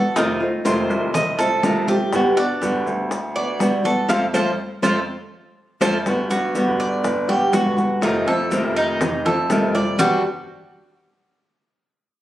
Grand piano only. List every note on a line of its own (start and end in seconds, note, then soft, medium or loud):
0.16 0.40 F1 medium
0.65 0.89 F1 loud
0.90 1.84 C2 medium
2.13 2.36 G1 loud
2.62 2.85 G1 loud
2.86 3.81 D2 medium
4.09 4.28 F2 loud
4.34 4.52 F2 medium
4.83 5.01 F2 loud
5.81 6.00 F2 loud
6.06 6.29 G1 medium
6.30 6.65 G2 medium
6.67 7.02 G1 medium
7.04 7.27 G1 loud
7.29 7.64 G2 medium
7.65 8.01 G1 medium
8.02 8.26 F1 loud
8.27 8.62 F2 medium
8.64 8.99 F1 medium
9.01 9.24 F1 loud
9.25 9.60 F2 medium
9.62 9.97 F1 medium
9.99 10.22 G1 medium